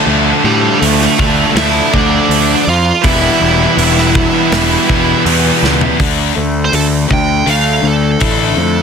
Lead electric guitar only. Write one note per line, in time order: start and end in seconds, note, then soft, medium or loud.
0.45 0.79 G3 medium
0.45 0.80 G4 medium
0.80 1.52 A3 medium
0.80 1.51 A4 medium
1.57 1.91 E4 medium
1.57 1.94 E5 loud
1.93 2.63 D4 medium
1.93 2.69 D5 loud
2.69 3.03 F4 medium
2.69 3.05 F5 loud
3.05 5.22 E4 medium
3.05 5.22 E5 medium
6.65 6.73 C5 medium
6.75 6.85 A4 medium
7.13 7.50 G5 loud
7.50 7.87 F5 medium
7.88 8.82 A4 medium